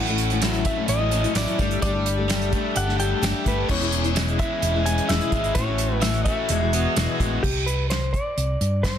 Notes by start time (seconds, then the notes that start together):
Already playing: A1 A2 A3 C#4 F#4 A4 F#5
0.07 A3 C#4 E4, closed hi-hat
0.18 closed hi-hat
0.30 A3 C#4 E4, closed hi-hat
0.42 A2 F#3 A3 C#4 E4, snare, closed hi-hat, tambourine
0.53 closed hi-hat
0.65 F#3 A3 C#4 E4 E5, kick, closed hi-hat
0.76 A3 C#4 E4
0.88 A1 E4 D#5, closed hi-hat
0.99 A3 C#4 E4
1.11 F#3 A3 C#4 E4, closed hi-hat
1.23 A3 C#4 E4, closed hi-hat
1.34 A1 A2 F#3 A3 C#4 E4 D5, snare, closed hi-hat, tambourine
1.47 closed hi-hat
1.58 G1 G3 A3 D4 G4 A4, kick, closed hi-hat
1.71 closed hi-hat
1.82 G1 G3 A3 D4 G4 D5, kick, closed hi-hat
1.94 A3 D4 G4
2.06 closed hi-hat
2.17 A3 D4 G4
2.28 G3 A3 D4 G4, snare, closed hi-hat, tambourine
2.41 closed hi-hat
2.50 G3 A3 D4 G4, kick, closed hi-hat
2.75 G1 G4 F#5, closed hi-hat
2.86 A3 D4 G4, snare
2.98 G3 A3 D4 G4 G5, closed hi-hat
3.22 G1 G3 A3 D4 G4, snare, closed hi-hat, tambourine
3.44 G1 G3 A3 D4 G4 B4, kick, closed hi-hat
3.68 E1 E2 B2 E3 G#3 C#4 E4 G#4 C#5, kick, crash
3.80 E3 G#3 C#4 E4, closed hi-hat
3.92 closed hi-hat
4.04 E3 G#3 C#4 E4, closed hi-hat
4.16 E2 B2 E3 G#3 C#4 E4, snare, closed hi-hat, tambourine
4.28 closed hi-hat
4.39 E3 G#3 C#4 E4 E5, kick, closed hi-hat
4.62 E1 E4, closed hi-hat
4.74 E3 G#3 C#4 E4
4.86 E3 G#3 C#4 E4 G#5, closed hi-hat
4.98 closed hi-hat
5.09 E1 E2 B2 E3 G#3 C#4 E4 E5, snare, closed hi-hat, tambourine
5.21 closed hi-hat
5.32 G#1 E3 G#3 C#4 E4, kick, closed hi-hat
5.44 closed hi-hat
5.55 A1 A2 E3 A3 C#4 F#4 A4 C#5, kick, closed hi-hat
5.67 A3 C#4 F#4
5.78 closed hi-hat
5.90 A3 C#4 F#4
6.01 A2 E3 A3 C#4 F#4 E5, snare, closed hi-hat, tambourine
6.14 closed hi-hat
6.24 E3 A3 C#4 F#4 E5, kick, closed hi-hat
6.49 E1 E2 B2 E3 G#3 B3 E4 F#4 G#4, closed hi-hat
6.62 E3 G#3 B3 F#4
6.72 E3 G#3 B3 F#4, closed hi-hat
6.96 E1 E2 B2 E3 G#3 B3 F#4, snare, closed hi-hat, tambourine
7.18 A1 E3 G#3 B3 F#4, kick, closed hi-hat
7.43 C2 G4, kick, crash
7.66 B4, closed hi-hat
7.90 C5, snare, closed hi-hat
8.13 D5, kick, closed hi-hat
8.37 C2, closed hi-hat
8.61 G2, closed hi-hat
8.83 C5, kick, snare, closed hi-hat